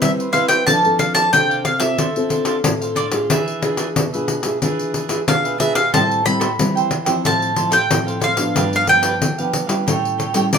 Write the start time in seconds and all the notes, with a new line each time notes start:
Already playing: C4 E4 B4
0.01 G3 E5, pandeiro
0.18 B4 C5 E5, pandeiro
0.32 C4 E4 B4 C5 E5 F5, pandeiro
0.48 B4 C5 E5 G5, pandeiro
0.66 F3 C4 D4 A4 D5 F5 A5, pandeiro
0.85 C4 D4 A4, pandeiro
0.98 D4 A4 D5 F5, pandeiro
1.14 D4 A4 D5 F5 A5, pandeiro
1.33 C3 C4 D4 A4 G5, pandeiro
1.49 A4 D5 F5, pandeiro
1.65 F5, pandeiro
1.78 C4 F4 A4 D5 E5 F5, pandeiro
1.98 D3 D4 A4 C5, pandeiro
2.16 C4 F4 A4, pandeiro
2.29 D4 A4 C5 F5, pandeiro
2.45 D4 A4 C5 F5, pandeiro
2.64 A2 C4 F4 A4, pandeiro
2.81 A4 C5 F5, pandeiro
2.95 D4 A4 C5 D5 F5, pandeiro
3.12 D4 F4 G#4 A4 C5 F5, pandeiro
3.30 E3 D4 G#4 B4 E5, pandeiro
3.48 pandeiro
3.62 D4 F4 G#4 B4 E5, pandeiro
3.77 D4 G#4 B4 E5, pandeiro
3.96 B2, pandeiro
4.13 D4 F4 G#4 B4 E5, pandeiro
4.28 pandeiro
4.43 D4 F4 G#4 B4 E5, pandeiro
4.62 E3 D4 F4 G#4 B4 E5, pandeiro
4.79 pandeiro
4.94 D4 G#4 B4 E5, pandeiro
5.08 D4 F4 G#4 B4 E5, pandeiro
5.28 B2 D4 F4 G#4 F5, pandeiro
5.44 G#4 B4 E5, pandeiro
5.58 D4 F4 G#4 B4 E5, pandeiro
5.73 G#4 B4 E5 F5, pandeiro
5.93 A2 G3 C4 E4 A4 C5 E5 G5 A5, pandeiro
6.11 pandeiro
6.23 G3 C4 E4 A4 C5 E5 G5 B5, pandeiro
6.40 A4 C5 E5 G5, pandeiro
6.59 E3 G3 C4 E4, pandeiro
6.75 C5 E5 G5, pandeiro
6.91 pandeiro
7.05 F3 C4 E4 C5 E5 G5, pandeiro
7.24 A2 A4 C5 F5 A5, pandeiro
7.42 pandeiro
7.55 F3 C4 E4 A4 C5 F5, pandeiro
7.71 E4 A4 C5 F5 G5, pandeiro
7.91 A2 F3 C4 E4, pandeiro
8.07 A4 C5 F5, pandeiro
8.20 E4 A4 C5 F5, pandeiro
8.36 F3 B3 D4 A4 C5 F5, pandeiro
8.55 G2 D4 G4 B4 F5, pandeiro
8.73 F5, pandeiro
8.87 F3 B3 D4 G4 B4 F5 G5, pandeiro
9.03 D4 G4 B4 F5, pandeiro
9.21 D3, pandeiro
9.38 F3 B3 D4 G4 B4 F5, pandeiro
9.53 pandeiro
9.67 G3 C#4 E4 G4 B4 F5, pandeiro
9.86 A2 G4 A4 C#5 G5, pandeiro
10.05 pandeiro
10.18 G4 A4 C#5 G5, pandeiro
10.34 G3 C#4 E4 G4 A4 C#5 G5, pandeiro
10.53 E3 D5, pandeiro